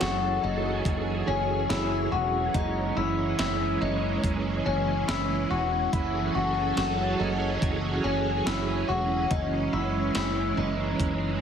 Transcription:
0.00 0.38 F#1 medium
0.00 9.26 E3 medium
0.00 2.51 F#3 medium
0.00 11.41 C#4 medium
0.00 0.43 F#4 medium
0.00 2.51 G#4 medium
0.00 2.51 A4 medium
0.00 snare medium
0.00 closed hi-hat medium
0.43 0.81 F#1 medium
0.43 1.27 D#4 medium
0.85 1.23 F#1 medium
0.85 kick medium
0.85 closed hi-hat medium
1.27 1.65 F#1 medium
1.27 1.70 C#4 medium
1.69 2.07 F#1 medium
1.69 2.12 E4 medium
1.69 snare medium
1.69 closed hi-hat medium
2.12 2.49 E1 medium
2.12 2.54 F#4 medium
2.54 2.92 F#1 medium
2.54 5.89 G#3 medium
2.54 2.97 D#4 medium
2.54 kick medium
2.54 closed hi-hat medium
2.97 3.34 F#1 medium
2.97 3.38 E4 medium
3.39 3.76 F#1 medium
3.39 3.81 E4 medium
3.39 snare loud
3.39 closed hi-hat medium
3.81 4.19 F#1 medium
3.81 4.65 D#4 medium
4.24 4.61 F#1 medium
4.24 kick medium
4.24 closed hi-hat soft
4.66 5.03 F#1 medium
4.66 5.08 C#4 medium
5.08 5.45 F#1 medium
5.08 5.50 E4 medium
5.08 snare loud
5.08 closed hi-hat medium
5.50 5.88 E1 medium
5.50 5.93 F#4 medium
5.92 6.30 F#1 medium
5.92 9.27 F#3 medium
5.92 6.35 E4 medium
5.92 9.27 G#4 medium
5.92 9.27 A4 medium
5.92 kick loud
5.92 closed hi-hat medium
6.35 6.72 F#1 medium
6.35 6.76 F#4 medium
6.77 7.14 F#1 medium
6.77 7.20 F#4 medium
6.77 snare medium
6.77 closed hi-hat medium
7.19 7.57 F#1 medium
7.19 8.04 D#4 medium
7.62 7.99 F#1 loud
7.62 kick medium
7.62 closed hi-hat soft
8.04 8.41 F#1 medium
8.04 8.46 C#4 medium
8.46 8.83 F#1 medium
8.46 8.88 E4 medium
8.46 snare loud
8.46 closed hi-hat medium
8.89 9.26 E1 medium
8.89 9.31 F#4 medium
9.30 9.68 F#1 medium
9.30 11.41 E3 medium
9.30 11.41 G#3 medium
9.30 9.73 D#4 medium
9.30 kick loud
9.30 closed hi-hat medium
9.73 10.10 F#1 medium
9.73 10.14 E4 medium
10.15 10.52 F#1 medium
10.15 10.58 E4 medium
10.15 snare loud
10.15 closed hi-hat medium
10.57 10.95 F#1 medium
10.57 11.41 D#4 medium
11.00 11.37 F#1 medium
11.00 kick medium
11.00 closed hi-hat medium

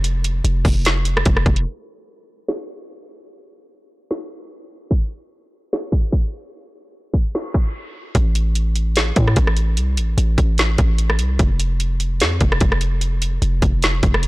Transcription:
0.00 0.42 F1 loud
0.04 closed hi-hat medium
0.24 closed hi-hat medium
0.44 0.64 F1 loud
0.44 closed hi-hat medium
0.65 1.23 F1 loud
0.65 kick medium
0.65 open hi-hat medium
0.85 snare loud
0.85 closed hi-hat medium
1.05 closed hi-hat medium
1.17 cross-stick loud
1.25 1.45 F1 loud
1.25 kick loud
1.25 closed hi-hat medium
1.37 cross-stick medium
1.46 1.65 F1 loud
1.46 kick loud
1.46 closed hi-hat soft
1.56 closed hi-hat medium
2.48 snare loud
4.11 snare loud
4.91 kick loud
5.73 snare loud
5.92 kick loud
6.12 kick loud
7.13 kick medium
7.13 open hi-hat soft
7.35 snare loud
7.54 kick loud
8.15 9.12 A1 loud
8.15 kick loud
8.15 closed hi-hat medium
8.35 closed hi-hat medium
8.55 closed hi-hat medium
8.76 closed hi-hat medium
8.96 snare loud
8.96 closed hi-hat medium
9.16 9.36 A2 loud
9.16 kick loud
9.16 closed hi-hat medium
9.28 cross-stick medium
9.36 9.79 A1 loud
9.36 kick loud
9.36 closed hi-hat medium
9.47 cross-stick medium
9.57 closed hi-hat medium
9.77 9.99 C2 loud
9.77 closed hi-hat medium
9.97 10.17 A1 loud
9.97 closed hi-hat medium
10.18 10.37 A1 loud
10.18 closed hi-hat medium
10.38 10.77 A1 loud
10.38 kick medium
10.38 closed hi-hat medium
10.58 snare loud
10.58 closed hi-hat medium
10.78 11.21 A1 loud
10.78 kick loud
10.78 closed hi-hat medium
10.98 closed hi-hat medium
11.10 cross-stick medium
11.19 11.38 C2 loud
11.19 closed hi-hat medium
11.39 12.22 F1 loud
11.39 kick loud
11.39 closed hi-hat medium
11.60 closed hi-hat medium
11.80 closed hi-hat medium
12.00 closed hi-hat medium
12.20 12.40 F2 loud
12.20 snare loud
12.20 closed hi-hat medium
12.41 12.60 F1 loud
12.41 kick loud
12.41 closed hi-hat medium
12.52 cross-stick loud
12.60 13.39 F1 loud
12.60 kick loud
12.60 closed hi-hat medium
12.72 cross-stick medium
12.81 closed hi-hat medium
13.01 closed hi-hat medium
13.22 closed hi-hat medium
13.42 13.61 F1 loud
13.42 closed hi-hat medium
13.62 14.01 F1 loud
13.62 kick medium
13.62 closed hi-hat medium
13.82 snare loud
13.82 closed hi-hat medium
14.03 14.28 F1 loud
14.03 kick loud
14.03 closed hi-hat medium
14.14 cross-stick loud
14.23 closed hi-hat medium

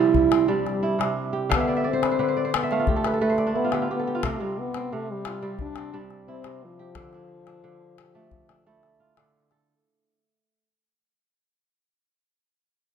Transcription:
0.00 0.98 C3 medium
0.00 1.04 F3 medium
0.00 0.47 G3 medium
0.00 0.31 C4 medium
0.00 0.37 D4 medium
0.00 0.51 E4 loud
0.14 calabash thump medium
0.32 2.08 C4 medium
0.32 calabash click medium
0.48 1.55 G3 medium
0.48 1.17 G3 medium
0.48 2.16 D4 medium
0.67 calabash click soft
0.83 1.56 E4 medium
0.99 1.55 C3 medium
0.99 calabash click medium
1.33 2.74 G4 medium
1.49 2.18 D3 medium
1.49 1.89 B3 medium
1.49 1.82 F5 medium
1.49 calabash thump medium
1.49 calabash click medium
1.60 1.76 E5 medium
1.68 1.84 D5 medium
1.76 2.63 E5 medium
1.84 2.47 C4 medium
1.84 2.36 D5 medium
1.93 2.11 C5 medium
2.02 2.19 B4 medium
2.02 calabash click medium
2.11 2.28 C5 medium
2.19 3.71 D3 medium
2.19 2.51 B4 medium
2.28 2.44 C5 medium
2.37 2.53 D5 medium
2.45 2.56 C4 medium
2.45 3.11 C5 medium
2.54 2.87 B3 medium
2.54 3.38 D5 medium
2.54 calabash click medium
2.63 2.85 E5 medium
2.71 3.21 A3 medium
2.71 3.61 F5 medium
2.71 calabash click soft
2.79 3.61 F4 medium
2.87 3.58 A3 medium
2.87 3.73 G4 medium
2.87 calabash thump medium
2.96 3.13 A4 medium
3.04 3.21 B4 medium
3.04 calabash click medium
3.14 3.99 A4 medium
3.21 5.21 A3 medium
3.21 4.29 B4 medium
3.30 4.48 C5 medium
3.38 4.49 D5 medium
3.38 calabash click soft
3.47 5.15 D4 medium
3.55 3.90 B3 loud
3.55 3.88 E4 medium
3.64 3.81 F4 medium
3.72 4.28 D3 medium
3.72 3.90 G4 medium
3.72 calabash click medium
3.82 4.14 F4 medium
3.91 4.26 B3 medium
3.91 4.07 G4 medium
3.99 5.31 A4 medium
4.07 5.49 G4 medium
4.15 5.26 F4 medium
4.23 4.39 C3 medium
4.23 4.44 A3 medium
4.23 4.75 C4 medium
4.23 calabash thump medium
4.23 calabash click medium
4.40 4.91 C3 medium
4.40 4.61 G3 medium
4.59 4.95 B3 medium
4.74 5.42 C4 medium
4.74 calabash click medium
4.92 6.44 C3 medium
4.92 5.13 A3 loud
5.11 5.61 G3 loud
5.25 6.34 F4 medium
5.25 calabash click medium
5.42 5.92 G3 medium
5.42 5.77 C4 medium
5.42 calabash click soft
5.59 5.99 D4 loud
5.59 calabash thump medium
5.76 7.57 C4 medium
5.76 calabash click medium
5.93 7.00 G3 medium
5.93 6.95 D4 medium
6.11 calabash click soft
6.28 6.65 C4 medium
6.28 7.85 E4 medium
6.44 7.00 C3 medium
6.44 calabash click medium
6.64 9.01 F3 loud
6.79 7.98 G4 medium
6.95 7.62 D3 medium
6.95 7.14 D4 medium
6.95 calabash thump medium
6.95 calabash click medium
7.13 7.47 D4 medium
7.13 calabash click soft
7.47 8.14 D4 medium
7.47 calabash click medium
7.64 9.17 D3 medium
7.98 9.39 G4 medium
7.98 calabash click medium
8.15 8.66 A3 medium
8.15 8.50 D4 medium
8.31 calabash thump medium
8.49 10.18 D4 medium
8.49 calabash click medium
8.67 10.66 A3 medium
8.67 10.24 E4 medium
8.83 calabash click soft
9.00 10.51 F4 medium
9.17 9.73 D3 medium
9.17 calabash click medium
9.51 10.83 A4 medium
9.51 calabash click soft

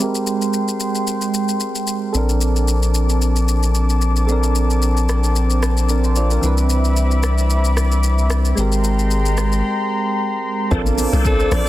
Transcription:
0.00 2.09 G#3 medium
0.00 2.12 G#3 medium
0.00 2.10 C4 medium
0.00 2.11 G4 medium
0.00 2.12 A#4 medium
0.00 2.12 G5 medium
0.00 2.12 C6 medium
0.00 shaker medium
0.15 shaker medium
0.27 shaker medium
0.42 shaker soft
0.53 shaker medium
0.68 shaker medium
0.80 shaker medium
0.95 shaker soft
1.07 shaker medium
1.21 shaker medium
1.34 shaker medium
1.49 shaker medium
1.60 shaker medium
1.75 shaker medium
1.87 shaker medium
2.13 6.39 A#1 medium
2.13 8.53 C4 medium
2.13 4.25 C4 medium
2.13 4.25 D4 medium
2.13 4.24 A4 medium
2.13 6.39 A5 medium
2.13 6.39 D6 medium
2.13 shaker medium
2.18 4.26 A#4 medium
2.29 shaker medium
2.41 shaker medium
2.56 shaker soft
2.68 shaker medium
2.83 shaker medium
2.95 shaker medium
3.09 shaker medium
3.22 shaker medium
3.36 shaker medium
3.49 shaker medium
3.63 shaker medium
3.75 shaker medium
3.90 shaker soft
4.01 shaker medium
4.16 shaker medium
4.27 6.39 C4 medium
4.27 5.87 D4 medium
4.27 6.38 A4 medium
4.27 shaker medium
4.32 5.88 A#4 medium
4.43 shaker medium
4.55 shaker medium
4.70 shaker soft
4.82 shaker medium
4.97 shaker medium
5.09 cross-stick medium
5.09 shaker medium
5.24 shaker medium
5.36 shaker medium
5.50 shaker medium
5.63 cross-stick medium
5.63 shaker loud
5.77 shaker medium
5.89 6.04 D4 medium
5.89 6.04 A#4 medium
5.89 shaker medium
6.04 6.16 C5 medium
6.04 shaker soft
6.16 6.31 F4 medium
6.16 6.31 D5 medium
6.16 shaker medium
6.31 6.44 D4 medium
6.31 6.57 A#4 medium
6.31 shaker soft
6.41 8.53 C2 medium
6.41 8.53 E3 medium
6.41 8.53 C4 medium
6.41 8.54 D4 medium
6.41 8.55 E5 medium
6.41 8.55 B5 medium
6.41 8.55 D6 medium
6.41 shaker medium
6.47 8.55 B4 medium
6.58 shaker medium
6.70 shaker medium
6.85 shaker soft
6.96 shaker medium
7.11 shaker medium
7.23 cross-stick medium
7.23 shaker medium
7.38 shaker medium
7.50 shaker medium
7.65 shaker medium
7.77 cross-stick medium
7.77 shaker medium
7.92 shaker medium
8.03 shaker medium
8.18 shaker soft
8.30 cross-stick medium
8.30 shaker medium
8.45 shaker medium
8.55 9.62 G#1 medium
8.55 10.67 G#3 medium
8.55 10.69 G#3 medium
8.55 10.67 C4 medium
8.55 10.68 G4 medium
8.55 10.69 G5 medium
8.55 10.69 A#5 medium
8.55 10.69 C6 medium
8.55 shaker medium
8.61 10.69 A#4 medium
8.72 shaker medium
8.84 shaker medium
8.99 shaker soft
9.11 shaker medium
9.26 shaker medium
9.37 cross-stick medium
9.37 shaker medium
9.52 shaker soft
10.71 11.07 A#1 loud
10.71 11.58 C4 medium
10.71 11.58 D4 medium
10.71 11.59 F4 medium
10.71 11.58 A4 medium
10.71 10.82 A4 loud
10.71 11.59 A#4 loud
10.71 10.82 C5 medium
10.71 11.69 C5 medium
10.71 10.82 D5 loud
10.71 11.69 F5 medium
10.71 11.69 A5 medium
10.71 11.69 D6 medium
10.71 kick loud
10.71 shaker medium
10.86 high conga medium
10.86 shaker medium
10.98 open hi-hat medium
10.98 high conga medium
10.98 shaker loud
11.13 11.46 C2 loud
11.13 11.49 A4 medium
11.13 11.49 C5 medium
11.13 11.49 D5 medium
11.13 high conga medium
11.13 shaker medium
11.25 11.55 A4 loud
11.25 kick loud
11.25 shaker medium
11.40 shaker medium
11.51 11.69 A#1 medium
11.51 11.69 A4 medium
11.51 11.69 C5 medium
11.51 11.69 D5 medium
11.51 11.69 D5 loud
11.51 cross-stick medium
11.51 open hi-hat medium
11.51 high conga medium
11.51 low conga medium
11.51 shaker medium

